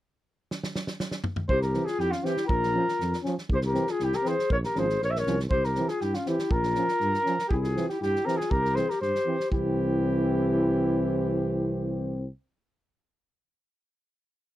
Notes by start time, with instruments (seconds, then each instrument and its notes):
0.51 snare
0.63 snare
0.75 snare
0.87 snare
1.00 snare
1.11 snare
1.24 mid tom
1.36 mid tom
1.48 tuba C2, clarinet G4, flugelhorn C5, kick
1.62 clarinet G4, flugelhorn A#4, snare
1.74 trombone E3, euphonium C4, snare
1.85 flugelhorn G#4, snare
1.89 clarinet F4
1.98 tuba F2, clarinet E4, flugelhorn G4, snare
2.11 clarinet C#4, flugelhorn F4, snare
2.23 trombone E3, euphonium C4, clarinet E4, flugelhorn G4, snare
2.37 snare
2.47 tuba A#1, clarinet F4, flugelhorn A#4, kick
2.63 snare
2.74 trombone F3, euphonium C#4
2.88 snare
3.00 tuba F2, snare
3.13 snare
3.24 trombone F3, euphonium C#4, snare
3.38 snare
3.49 tuba C2, clarinet G4, kick
3.54 flugelhorn C5
3.61 snare
3.66 clarinet G4, flugelhorn A#4
3.74 trombone E3, euphonium C4, snare
3.87 clarinet F4, snare
3.91 flugelhorn G#4
4.00 tuba C2, clarinet E4, flugelhorn G4, snare
4.13 clarinet G4, flugelhorn A#4, snare
4.23 trombone E3, euphonium C4, clarinet G#4, snare
4.28 flugelhorn C5
4.39 snare
4.50 tuba A#1, clarinet A#4, flugelhorn C#5, kick
4.64 clarinet G4, flugelhorn A#4, snare
4.75 tuba G#1, trombone F3, euphonium C#4, clarinet G#4, flugelhorn C5, snare
4.89 snare
5.01 tuba A#1, clarinet A#4, flugelhorn C#5, snare
5.08 clarinet C5, flugelhorn E5
5.16 clarinet A#4, flugelhorn C#5, snare
5.26 tuba C2, trombone F3, euphonium C#4, snare
5.40 snare
5.50 tuba C2, clarinet G4, flugelhorn C5, kick
5.64 clarinet G4, flugelhorn A#4, snare
5.75 trombone E3, euphonium C4, snare
5.88 clarinet F4, flugelhorn G#4, snare
6.01 tuba G2, clarinet E4, flugelhorn G4, snare
6.14 clarinet C#4, flugelhorn F4, snare
6.26 trombone E3, euphonium C4, clarinet E4, flugelhorn G4, snare
6.39 snare
6.51 tuba A#1, clarinet F4, flugelhorn A#4, kick
6.63 snare
6.75 trombone F3, euphonium C#4, snare
6.88 snare
7.00 tuba G2, snare
7.14 snare
7.24 trombone F3, euphonium C#4, snare
7.39 snare
7.48 tuba C2, clarinet F4, flugelhorn G4 G#4, kick
7.52 clarinet E4
7.60 flugelhorn G#4, snare
7.65 clarinet F4
7.76 trombone E3, euphonium C4, snare
7.88 clarinet E4, flugelhorn G4, snare
8.00 tuba G2, clarinet E4, flugelhorn G4, snare
8.16 snare
8.25 trombone E3, euphonium C4, clarinet G4, flugelhorn A#4, snare
8.37 clarinet F4, flugelhorn G#4, snare
8.50 tuba C2, clarinet G4, flugelhorn A#4, kick
8.65 snare
8.75 trombone E3, euphonium C4, clarinet G#4, flugelhorn C5, snare
8.89 clarinet G4, flugelhorn A#4, snare
9.01 tuba G2, clarinet G4, flugelhorn C5, snare
9.15 snare
9.26 trombone E3, euphonium C4
9.40 snare
9.51 tuba C2, trombone E3, euphonium C4, clarinet E4, flugelhorn G4, kick